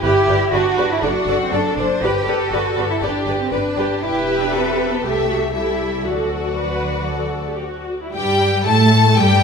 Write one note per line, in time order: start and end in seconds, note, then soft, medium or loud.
0.03 0.12 G1 medium
0.03 0.52 E4 medium
0.03 0.11 G4 medium
0.03 0.49 G4 medium
0.03 0.11 B4 medium
0.03 0.12 D5 medium
0.28 0.36 G1 medium
0.28 0.36 G4 medium
0.28 0.36 B4 medium
0.28 0.38 D5 soft
0.53 0.61 G1 medium
0.53 1.02 D4 medium
0.53 0.90 F#4 medium
0.53 0.62 G4 medium
0.53 0.61 B4 medium
0.53 0.62 D5 medium
0.78 0.86 G1 medium
0.78 0.86 G4 medium
0.78 0.86 B4 medium
0.78 0.86 D5 medium
0.91 1.03 E4 medium
1.02 1.11 F#1 medium
1.02 1.40 D4 medium
1.02 1.53 F#4 medium
1.02 1.10 A4 medium
1.02 1.11 D5 medium
1.27 1.35 F#1 medium
1.27 1.36 A4 medium
1.27 1.36 D5 medium
1.41 1.53 C4 medium
1.52 1.60 F#1 medium
1.52 2.02 D4 medium
1.52 1.61 A4 medium
1.52 1.78 A4 medium
1.52 1.61 D5 medium
1.77 1.85 F#1 medium
1.77 1.86 A4 soft
1.77 2.02 C5 medium
1.77 1.86 D5 soft
2.03 2.11 G1 medium
2.03 2.52 G4 medium
2.03 2.11 G4 medium
2.03 2.27 B4 medium
2.03 2.11 B4 medium
2.03 2.11 D5 soft
2.27 2.35 G1 medium
2.27 2.36 G4 medium
2.27 3.02 A4 medium
2.27 2.36 B4 medium
2.27 2.35 D5 soft
2.51 2.59 G1 medium
2.51 2.90 F#4 medium
2.51 2.61 G4 soft
2.51 2.61 B4 medium
2.51 2.60 D5 soft
2.77 2.85 G1 medium
2.77 2.86 G4 soft
2.77 2.86 B4 soft
2.77 2.85 D5 soft
2.90 2.95 E4 medium
3.02 3.10 G1 medium
3.02 3.39 D4 medium
3.02 3.52 G4 medium
3.02 3.11 G4 soft
3.02 3.11 B4 soft
3.02 3.10 D5 medium
3.26 3.34 G1 medium
3.26 3.36 G4 soft
3.26 3.36 B4 soft
3.26 3.34 D5 soft
3.40 3.52 C4 medium
3.52 3.60 G1 soft
3.52 4.02 D4 medium
3.52 3.62 G4 soft
3.52 3.77 B4 medium
3.52 3.61 B4 soft
3.52 3.60 D5 soft
3.76 3.85 G1 medium
3.76 4.02 G4 medium
3.76 3.86 G4 soft
3.76 3.86 B4 soft
3.76 3.84 D5 soft
4.02 4.98 E1 medium
4.02 4.40 E4 medium
4.02 4.52 G4 medium
4.02 4.99 G4 medium
4.02 4.99 B4 medium
4.02 4.98 E5 soft
4.40 4.52 D4 medium
4.53 4.90 C4 medium
4.53 5.03 A4 medium
4.90 4.95 B3 medium
5.02 6.03 C2 soft
5.02 5.52 A3 medium
5.02 5.52 G4 soft
5.02 5.28 G4 soft
5.02 5.52 A4 soft
5.02 5.53 E5 soft
5.28 5.36 F#4 soft
5.53 6.04 G3 soft
5.53 6.05 E4 soft
5.53 6.04 G4 soft
5.53 6.04 A4 soft
5.53 6.05 E5 soft
6.05 7.94 D2 soft
6.05 7.62 F#3 soft
6.05 6.52 F#4 soft
6.05 7.89 F#4 soft
6.05 6.52 A4 soft
6.05 7.94 D5 soft
6.58 7.06 B4 soft
7.10 7.49 A4 soft
7.49 7.62 G4 soft
7.62 8.01 F#4 soft
8.01 8.14 E4 soft
8.14 8.62 G2 medium
8.14 8.61 G3 medium
8.14 8.62 G3 medium
8.14 8.62 G4 medium
8.14 8.62 G5 medium
8.65 9.15 A2 medium
8.65 9.16 A3 medium
8.65 9.15 A3 medium
8.65 9.15 A4 medium
8.65 9.17 A5 medium
9.16 9.43 G2 medium
9.16 9.43 G3 medium
9.16 9.43 G4 medium
9.16 9.43 G5 medium